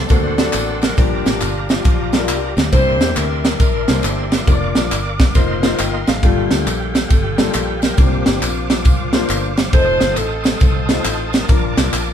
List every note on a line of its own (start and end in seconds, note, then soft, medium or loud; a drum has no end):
0.00 0.96 A4 medium
0.00 0.96 C6 medium
0.09 0.47 D2 medium
0.09 0.78 D3 medium
0.09 0.33 A#3 medium
0.09 0.94 C4 medium
0.09 0.33 D4 medium
0.09 0.94 F#4 medium
0.09 0.33 F#4 medium
0.09 0.78 A4 medium
0.09 0.33 C5 medium
0.09 5.32 D5 medium
0.09 0.97 F#5 medium
0.09 kick loud
0.09 ride medium
0.09 tambourine medium
0.38 0.72 A#3 medium
0.38 0.72 D4 medium
0.38 0.72 F#4 medium
0.38 0.72 D5 medium
0.38 snare loud
0.38 ride medium
0.38 tambourine medium
0.53 0.91 A1 medium
0.53 clap medium
0.53 ride medium
0.53 tambourine loud
0.82 0.97 A#4 loud
0.82 snare loud
0.82 ride medium
0.82 tambourine medium
0.97 1.22 A#1 loud
0.97 1.66 A#2 medium
0.97 1.47 G3 medium
0.97 1.47 D4 medium
0.97 1.70 D4 medium
0.97 1.47 F4 medium
0.97 1.41 G4 loud
0.97 2.71 G4 medium
0.97 1.47 A#4 medium
0.97 2.71 F5 medium
0.97 2.71 A#5 medium
0.97 kick loud
0.97 ride medium
0.97 tambourine medium
1.26 1.39 A1 medium
1.26 snare loud
1.26 ride medium
1.26 tambourine medium
1.41 1.79 G1 medium
1.41 1.68 F4 medium
1.41 clap medium
1.41 ride medium
1.41 tambourine medium
1.69 2.54 D4 medium
1.69 2.53 F4 medium
1.69 snare loud
1.69 ride medium
1.69 tambourine medium
1.85 2.29 A#1 medium
1.85 kick loud
1.85 ride medium
1.85 tambourine medium
2.13 2.47 G3 medium
2.13 2.47 D4 medium
2.13 2.47 F4 medium
2.13 2.17 A4 medium
2.13 snare loud
2.13 ride medium
2.13 tambourine medium
2.19 2.50 A#4 medium
2.29 2.53 C2 medium
2.29 clap medium
2.29 ride medium
2.29 tambourine medium
2.57 2.70 D2 loud
2.57 snare loud
2.57 ride medium
2.57 tambourine medium
2.72 3.00 C2 loud
2.72 3.41 C3 medium
2.72 3.22 A#3 medium
2.72 3.22 D4 medium
2.72 3.22 E4 medium
2.72 3.16 E4 medium
2.72 3.56 G4 medium
2.72 6.20 A#4 medium
2.72 2.79 B4 medium
2.72 3.13 C5 loud
2.72 4.46 E5 medium
2.72 4.46 C6 medium
2.72 kick loud
2.72 ride medium
2.72 tambourine medium
2.77 3.24 C5 medium
3.00 3.14 E2 loud
3.00 snare loud
3.00 ride medium
3.00 tambourine medium
3.16 3.54 D2 medium
3.16 3.60 D4 medium
3.16 3.60 E4 medium
3.16 3.60 A#4 loud
3.16 clap medium
3.16 ride medium
3.16 tambourine medium
3.44 snare loud
3.44 ride medium
3.44 tambourine medium
3.60 3.84 A#1 medium
3.60 4.33 D4 medium
3.60 4.44 E4 medium
3.60 4.01 A#4 loud
3.60 kick loud
3.60 ride medium
3.60 tambourine medium
3.88 4.02 C2 medium
3.88 4.22 A#3 medium
3.88 4.22 D4 medium
3.88 4.22 E4 medium
3.88 4.22 C5 medium
3.88 snare loud
3.88 ride medium
3.88 tambourine medium
4.03 4.41 G1 loud
4.03 4.32 G4 medium
4.03 clap loud
4.03 ride medium
4.03 tambourine loud
4.32 5.16 A#3 medium
4.32 5.17 D4 medium
4.32 4.92 F4 medium
4.32 snare loud
4.32 ride medium
4.32 tambourine medium
4.47 4.72 F1 loud
4.47 4.97 A#3 medium
4.47 4.97 D4 medium
4.47 4.97 F4 medium
4.47 4.55 C#5 medium
4.47 5.34 F5 medium
4.47 5.35 D6 medium
4.47 kick loud
4.47 ride medium
4.47 tambourine medium
4.53 5.00 D5 medium
4.75 4.90 A#1 medium
4.75 snare loud
4.75 ride medium
4.75 tambourine medium
4.91 5.29 G1 medium
4.91 clap medium
4.91 ride medium
4.91 tambourine medium
5.20 kick loud
5.20 snare loud
5.20 ride medium
5.20 tambourine medium
5.35 5.73 F1 medium
5.35 5.58 A#3 medium
5.35 5.58 D#4 medium
5.35 5.58 F4 medium
5.35 5.58 C5 medium
5.35 6.22 D#5 medium
5.35 12.13 F5 medium
5.35 6.22 C6 medium
5.35 kick loud
5.35 ride medium
5.35 tambourine medium
5.63 5.97 A#3 medium
5.63 5.97 D#4 medium
5.63 5.97 F4 medium
5.63 5.79 C5 loud
5.63 snare loud
5.63 ride medium
5.63 tambourine medium
5.78 6.03 G1 medium
5.78 6.06 A#4 soft
5.78 6.06 G5 medium
5.78 clap medium
5.78 ride medium
5.78 tambourine loud
6.07 6.21 A1 medium
6.07 6.22 A4 medium
6.07 6.49 F5 medium
6.07 snare loud
6.07 ride medium
6.07 tambourine medium
6.23 6.47 G1 loud
6.23 6.91 G2 medium
6.23 6.73 A#2 medium
6.23 6.73 G3 medium
6.23 7.07 A3 medium
6.23 7.07 A#3 medium
6.23 6.73 F4 medium
6.23 6.64 F4 loud
6.23 7.97 G4 medium
6.23 6.73 A4 medium
6.23 7.97 G5 medium
6.23 kick loud
6.23 ride medium
6.23 tambourine medium
6.51 6.64 D2 loud
6.51 snare loud
6.51 ride medium
6.51 tambourine medium
6.67 7.04 A#1 medium
6.67 7.11 D4 medium
6.67 7.11 F4 medium
6.67 7.11 A4 medium
6.67 clap medium
6.67 ride medium
6.67 tambourine medium
6.95 snare loud
6.95 ride medium
6.95 tambourine medium
7.10 7.48 G1 loud
7.10 7.95 D4 medium
7.10 7.95 F4 medium
7.10 7.80 A4 medium
7.10 kick loud
7.10 ride medium
7.10 tambourine medium
7.38 7.72 G3 medium
7.38 7.72 A#3 medium
7.38 7.72 F4 medium
7.38 7.72 A4 medium
7.38 snare loud
7.38 ride medium
7.38 tambourine medium
7.53 7.92 A#1 medium
7.53 clap loud
7.53 ride medium
7.53 tambourine loud
7.82 7.99 A#4 loud
7.82 snare loud
7.82 ride medium
7.82 tambourine medium
7.97 8.22 C2 loud
7.97 8.66 C3 medium
7.97 8.47 A#3 medium
7.97 8.69 A#3 medium
7.97 8.48 D4 medium
7.97 8.69 D4 medium
7.97 8.47 F4 medium
7.97 8.43 G4 loud
7.97 8.48 C5 medium
7.97 11.46 C5 medium
7.97 9.72 D6 medium
7.97 kick loud
7.97 ride medium
7.97 tambourine medium
8.26 8.40 G1 medium
8.26 snare loud
8.26 ride medium
8.26 tambourine medium
8.42 8.86 A#1 medium
8.42 8.70 F4 medium
8.42 clap medium
8.42 ride medium
8.42 tambourine medium
8.70 9.54 A#3 medium
8.70 9.54 D4 medium
8.70 9.55 F4 medium
8.70 snare loud
8.70 ride medium
8.70 tambourine medium
8.85 9.23 C2 medium
8.85 kick loud
8.85 ride medium
8.85 tambourine medium
9.13 9.48 A#3 medium
9.13 9.48 D4 medium
9.13 9.48 F4 medium
9.13 9.48 C5 medium
9.13 snare loud
9.13 ride medium
9.13 tambourine medium
9.29 9.67 G1 medium
9.29 clap loud
9.29 ride medium
9.29 tambourine loud
9.57 snare loud
9.57 ride medium
9.57 tambourine medium
9.73 9.97 F1 loud
9.73 10.23 A3 medium
9.73 10.16 D#4 medium
9.73 10.24 D#4 medium
9.73 10.23 F4 medium
9.73 10.17 A4 medium
9.73 9.81 A#4 medium
9.73 10.15 C5 loud
9.73 12.13 A5 medium
9.73 11.48 D#6 medium
9.73 kick loud
9.73 ride medium
9.73 tambourine medium
9.80 10.26 C5 medium
10.01 10.15 G1 medium
10.01 snare loud
10.01 ride medium
10.01 tambourine medium
10.17 10.54 A1 medium
10.17 10.61 C4 medium
10.17 10.61 D#4 medium
10.17 10.61 A4 medium
10.17 clap medium
10.17 ride medium
10.17 tambourine medium
10.44 snare loud
10.44 ride medium
10.44 tambourine medium
10.60 10.99 C2 medium
10.60 11.46 C4 medium
10.60 11.45 D#4 medium
10.60 11.03 A4 medium
10.60 kick loud
10.60 ride medium
10.60 tambourine medium
10.89 11.23 A3 medium
10.89 11.23 D#4 medium
10.89 11.24 F4 medium
10.89 11.24 C5 medium
10.89 snare loud
10.89 ride medium
10.89 tambourine medium
11.05 11.42 A1 medium
11.05 11.32 A4 medium
11.05 clap medium
11.05 ride medium
11.05 tambourine loud
11.33 12.13 D4 medium
11.33 12.13 F4 medium
11.33 11.93 A#4 medium
11.33 snare loud
11.33 ride medium
11.33 tambourine medium
11.48 11.73 A#1 loud
11.48 12.13 A#2 medium
11.48 11.99 A#3 medium
11.48 11.99 D4 medium
11.48 11.99 F4 medium
11.48 11.99 A#4 medium
11.48 12.13 A#4 medium
11.48 12.13 D6 medium
11.48 kick loud
11.48 ride medium
11.48 tambourine medium
11.77 11.91 C2 medium
11.77 snare loud
11.77 clap medium
11.77 ride medium
11.77 tambourine medium
11.93 12.13 A#1 medium
11.93 clap medium
11.93 ride medium
11.93 tambourine medium